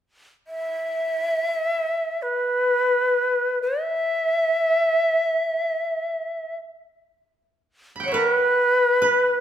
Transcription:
0.47 shakuhachi E5
2.22 shakuhachi B4
3.62 shakuhachi E5
7.96 koto B5
8.00 koto F#5 G5
8.06 shakuhachi C#5, koto E5
8.12 shakuhachi A#4, koto B4 C#5
8.30 shakuhachi B4
9.02 koto B4

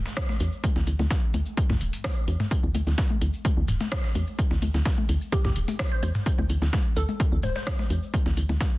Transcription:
0.06 snare, cabasa
0.17 kick, cross-stick, snare, tambourine, cabasa, claves
0.29 snare, high tom
0.40 fm bass E2, closed hi-hat, tambourine, cabasa
0.52 cabasa
0.64 kick, high tom, tambourine, cabasa
0.76 fm bass D2, snare
0.87 fm bass D2, closed hi-hat, tambourine, cabasa
0.99 fm bass D2, snare, high tom, cabasa, claves
1.11 kick, snare, tambourine, cabasa
1.34 fm bass D2, closed hi-hat, high tom, tambourine, cabasa
1.46 cabasa
1.57 kick, tambourine, cabasa
1.70 fm bass D2, snare, mid tom, high tom
1.80 fm bass D1, closed hi-hat, tambourine, cabasa, claves
1.93 closed hi-hat, cabasa
2.04 kick, cross-stick, snare, open hi-hat, high tom, cabasa
2.28 fm bass E2, closed hi-hat, tambourine, cabasa
2.40 snare, mid tom, high tom, cabasa
2.51 kick, tambourine, cabasa
2.63 fm bass D2, claves
2.75 fm bass D2, closed hi-hat, high tom, tambourine, cabasa
2.87 fm bass D2, snare, cabasa
2.98 kick, snare, tambourine, cabasa
3.10 high tom
3.21 fm bass D2, closed hi-hat, tambourine, cabasa
3.33 cabasa
3.45 kick, high tom, tambourine, cabasa, claves
3.57 fm bass D2
3.68 fm bass D1, closed hi-hat, mid tom, tambourine, cabasa
3.80 snare, high tom, cabasa
3.92 kick, cross-stick, snare, tambourine, cabasa
4.04 snare
4.15 fm bass E2, closed hi-hat, high tom, tambourine, cabasa
4.27 cabasa, claves
4.39 kick, tambourine, cabasa, claves
4.51 fm bass D2, snare
4.62 fm bass D2, closed hi-hat, high tom, tambourine, cabasa
4.74 fm bass D2, snare, cabasa
4.85 kick, snare, tambourine, cabasa
4.98 high tom
5.09 fm bass D2, closed hi-hat, tambourine, cabasa
5.21 cabasa, claves
5.32 synth pluck G4, kick, high tom, tambourine, cabasa
5.45 fm bass D2, synth pluck G4, snare, mid tom
5.56 fm bass D1, closed hi-hat, tambourine, cabasa
5.68 closed hi-hat, high tom, cabasa
5.79 kick, cross-stick, snare, open hi-hat, cabasa
5.92 synth pluck C5
6.03 fm bass E2, synth pluck C5, closed hi-hat, high tom, tambourine, cabasa, claves
6.14 snare, mid tom, cabasa
6.26 kick, tambourine, cabasa
6.38 fm bass D2, high tom
6.49 fm bass D2, closed hi-hat, tambourine, cabasa
6.62 fm bass D2, snare, cabasa
6.73 kick, snare, high tom, tambourine, cabasa
6.85 claves
6.96 fm bass D2, synth pluck A4, closed hi-hat, tambourine, cabasa
7.08 high tom, cabasa
7.20 kick, tambourine, cabasa
7.32 fm bass D2
7.43 fm bass D1, synth pluck C5, closed hi-hat, mid tom, high tom, tambourine, cabasa
7.55 synth pluck C5, snare, cabasa
7.67 kick, cross-stick, snare, tambourine, cabasa, claves
7.79 snare, high tom
7.90 fm bass E2, closed hi-hat, tambourine, cabasa
8.03 cabasa
8.13 kick, high tom, tambourine, cabasa
8.26 fm bass D2, snare
8.37 fm bass D2, closed hi-hat, tambourine, cabasa
8.49 fm bass D2, snare, high tom, cabasa, claves
8.61 kick, snare, tambourine, cabasa

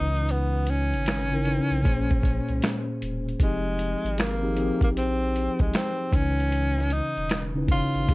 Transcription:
Already playing: analog synth bass C#2, tine electric piano C#3 E3 C#4 D#4 B4, tenor saxophone D#4
0.17 closed hi-hat
0.29 tenor saxophone B3, closed hi-hat
0.67 tenor saxophone C#4, closed hi-hat
0.93 analog synth bass G#1, closed hi-hat
1.06 finger snap, snare, closed hi-hat
1.31 tine electric piano C#3 C#4 D#4 E4 A#4
1.44 tine electric piano C#3 C#4 D#4 E4 B4, closed hi-hat
1.71 analog synth bass B1, closed hi-hat
1.82 analog synth bass A#1, tine electric piano A#2 A#3 C#4 G#4, kick, closed hi-hat
1.86 tine electric piano C5
2.11 kick
2.23 kick, closed hi-hat
2.49 analog synth bass C2, closed hi-hat
2.62 finger snap, snare, closed hi-hat
3.02 analog synth bass E1, closed hi-hat
3.29 closed hi-hat
3.39 analog synth bass F1, tine electric piano F3 C4 D#4 G4 G#4, tenor saxophone G#3, kick, closed hi-hat
3.79 closed hi-hat
4.04 analog synth bass G#1, closed hi-hat
4.18 tenor saxophone A#3, finger snap, snare, closed hi-hat
4.41 tine electric piano F3 C4 D#4 G4 G#4
4.55 tine electric piano F3 C4 D#4 G4 G#4, closed hi-hat
4.81 analog synth bass A#1, tenor saxophone A#3, kick, closed hi-hat
4.97 tenor saxophone C4, closed hi-hat
5.36 closed hi-hat
5.59 analog synth bass C2, tenor saxophone G#3, kick, closed hi-hat
5.74 tenor saxophone C4, finger snap, snare, closed hi-hat
6.11 analog synth bass C#2, tine electric piano C#3 E3 C#4 D#4 B4, kick, closed hi-hat
6.15 tenor saxophone C#4
6.40 closed hi-hat
6.52 closed hi-hat
6.78 snare
6.90 tenor saxophone D#4, closed hi-hat
7.17 analog synth bass E1, closed hi-hat
7.29 finger snap, snare, closed hi-hat
7.55 tine electric piano C#3 C#4 D#4 E4 B4
7.68 tine electric piano C#3 C#4 D#4 G#4 C#5, tenor saxophone F4, kick, closed hi-hat
7.94 analog synth bass G#1, closed hi-hat
8.07 analog synth bass F1, tine electric piano F3 C4 D#4 G4 G#4, kick, closed hi-hat

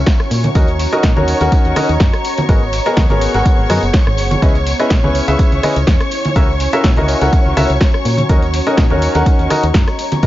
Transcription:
Already playing: ambient pad C#4 F#4 E5 A#5, string section C#5 C#6
0.06 kick, snare, closed hi-hat, tambourine
0.20 cross-stick, tambourine
0.31 fm bass A#2, open hi-hat, tambourine
0.43 closed hi-hat, tambourine, high conga
0.55 fm bass D#2, grand piano C#4 D#4 F#4 A#4 D#5, kick, closed hi-hat, tambourine
0.67 closed hi-hat, tambourine
0.79 snare, closed hi-hat, open hi-hat, tambourine
0.87 ambient pad D#5
0.92 grand piano C#4 D#4 F#4 A#4 D#5, cross-stick, closed hi-hat, tambourine
1.03 fm bass A#2, kick, snare, closed hi-hat, tambourine
1.17 fm bass D#2, grand piano C#4 D#4 F#4 A#4 C#5, tambourine, high conga
1.28 closed hi-hat, open hi-hat, tambourine
1.41 fm bass D#2, grand piano C#4 D#4 F#4 A#4 F#5, closed hi-hat, tambourine
1.52 kick, closed hi-hat, tambourine
1.64 fm bass D#2, closed hi-hat, tambourine
1.76 grand piano C#4 D#4 F#4 A#4 D#5, cross-stick, closed hi-hat, open hi-hat, tambourine, high conga
1.89 fm bass D#2, closed hi-hat, tambourine
2.00 fm bass F#2, kick, snare, closed hi-hat, tambourine
2.13 cross-stick, closed hi-hat, tambourine
2.25 closed hi-hat, open hi-hat, tambourine
2.38 closed hi-hat, tambourine, high conga
2.49 fm bass G#1, ambient pad B3, grand piano B3 F#4 G#4 A#4 D#5, kick, closed hi-hat, tambourine
2.63 tambourine
2.69 ambient pad G#4
2.73 ambient pad F#5, snare, closed hi-hat, open hi-hat, tambourine
2.86 grand piano B3 F#4 G#4 A#4 D#5, cross-stick, closed hi-hat, tambourine
2.97 fm bass D#2, kick, snare, closed hi-hat, tambourine
3.09 fm bass G#1, grand piano B3 F#4 G#4 A#4 C#5, closed hi-hat, tambourine, high conga
3.21 closed hi-hat, open hi-hat, tambourine
3.34 fm bass G#1, grand piano B3 F#4 G#4 A#4 F#5, closed hi-hat, tambourine
3.46 kick, closed hi-hat, tambourine
3.59 fm bass G#1, tambourine
3.69 fm bass F#2, grand piano B3 F#4 G#4 A#4 D#5, cross-stick, closed hi-hat, open hi-hat, tambourine, high conga
3.83 fm bass F#1, closed hi-hat, tambourine
3.94 kick, snare, closed hi-hat, tambourine
4.07 fm bass G#1, cross-stick, tambourine
4.17 fm bass F#1, open hi-hat, tambourine
4.31 closed hi-hat, tambourine, high conga
4.42 fm bass C#2, ambient pad C#4, grand piano C#4 E4 G#4 B4 D#5, kick, closed hi-hat, tambourine
4.55 closed hi-hat, tambourine
4.64 ambient pad B5, snare, closed hi-hat, open hi-hat, tambourine
4.79 grand piano C#4 E4 G#4 B4 D#5, ambient pad E4 D#6, cross-stick, closed hi-hat, tambourine
4.90 fm bass A#2, kick, snare, closed hi-hat, tambourine
5.04 fm bass C#2, grand piano C#4 E4 G#4 B4 C#5, tambourine, high conga
5.15 closed hi-hat, open hi-hat, tambourine
5.28 fm bass C#2, grand piano C#4 E4 G#4 B4 E5, closed hi-hat, tambourine
5.39 kick, closed hi-hat, tambourine
5.52 fm bass C#2, closed hi-hat, tambourine
5.63 grand piano C#4 E4 G#4 B4 D#5, cross-stick, closed hi-hat, open hi-hat, tambourine, high conga
5.76 fm bass C#2, closed hi-hat, tambourine
5.87 fm bass E2, kick, snare, closed hi-hat, tambourine
6.00 cross-stick, closed hi-hat, tambourine
6.11 closed hi-hat, open hi-hat, tambourine
6.25 ambient pad F#4, closed hi-hat, tambourine, high conga
6.36 fm bass C#2, grand piano C#4 E4 F#4 A#4 E5, kick, closed hi-hat, tambourine
6.48 ambient pad E5, tambourine
6.60 snare, closed hi-hat, open hi-hat, tambourine
6.73 grand piano C#4 E4 F#4 A#4 E5, cross-stick, closed hi-hat
6.84 fm bass A#2, ambient pad A#5, kick, snare, closed hi-hat, tambourine
6.97 fm bass C#2, grand piano C#4 E4 F#4 A#4 D#5, closed hi-hat, tambourine, high conga
7.08 closed hi-hat, open hi-hat, tambourine
7.21 fm bass C#2, grand piano C#4 E4 F#4 A#4 F#5, closed hi-hat, tambourine
7.33 kick, closed hi-hat, tambourine
7.46 fm bass C#2, tambourine
7.57 fm bass C#2, grand piano C#4 E4 F#4 A#4 E5, cross-stick, closed hi-hat, open hi-hat, tambourine, high conga
7.70 fm bass C#2, closed hi-hat, tambourine
7.81 kick, snare, closed hi-hat, tambourine
7.94 cross-stick, tambourine
8.05 fm bass A#2, open hi-hat, tambourine
8.17 closed hi-hat, tambourine, high conga
8.29 fm bass D#2, grand piano C#4 D#4 F#4 A#4 D#5, kick, closed hi-hat, tambourine
8.42 closed hi-hat, tambourine
8.54 ambient pad D#5, snare, closed hi-hat, open hi-hat, tambourine
8.67 grand piano C#4 D#4 F#4 A#4 D#5, cross-stick, closed hi-hat, tambourine
8.77 fm bass A#2, kick, snare, closed hi-hat, tambourine
8.90 fm bass D#2, grand piano C#4 D#4 F#4 A#4 C#5, tambourine, high conga
9.02 closed hi-hat, open hi-hat, tambourine
9.14 fm bass D#2, grand piano C#4 D#4 F#4 A#4 F#5, closed hi-hat, tambourine
9.26 kick, closed hi-hat, tambourine
9.39 fm bass D#2, closed hi-hat, tambourine
9.50 grand piano C#4 D#4 F#4 A#4 D#5, cross-stick, closed hi-hat, open hi-hat, tambourine, high conga
9.63 fm bass D#2, closed hi-hat, tambourine
9.74 fm bass F#2, kick, snare, closed hi-hat, tambourine
9.87 cross-stick, closed hi-hat, tambourine
9.99 closed hi-hat, open hi-hat, tambourine
10.12 closed hi-hat, tambourine, high conga
10.22 fm bass G#1, grand piano B3 F#4 G#4 A#4 D#5, kick, closed hi-hat, tambourine

